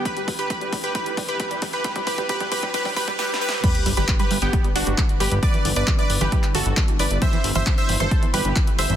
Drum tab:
CC |------------------------------------------------|------------------------------------------------|x-----------------------------------------------|------------------------------------------------|
HH |x--x--o--x--x--x--o--x--x--x--o--x--x--x--o--x--|x--x--o--x--x--x--o--x--x--o--o--x--------------|x--x--o--x--x--x--o--x--x--x--o--x--x--x--o--x--|x--x--o--x--x--x--o--x--x--x--o--x--x--x--o--x--|
CP |------------------------------------------------|------------------------------------------------|------------x-----------------------x-----------|------------x--------------x--------x-----------|
SD |------------------------------------------------|------------------------------------o---o---o---|------------------------------------------------|------------------------------------------------|
BD |o-----o-----o-----o-----o-----o-----o-----o-----|o--o--o--o--o--o--o--o--o--o--o--o--------------|o-----------o-----------o-----------o-----------|o-----------o-----------o-----------o-----------|

CC |------------------------------------------------|
HH |x--x--o--x--x--x--o--x--x--x--o--x--x--x--o--x--|
CP |------------x-----------------------x-----------|
SD |------------------------------------------------|
BD |o-----------o-----------o-----------o-----------|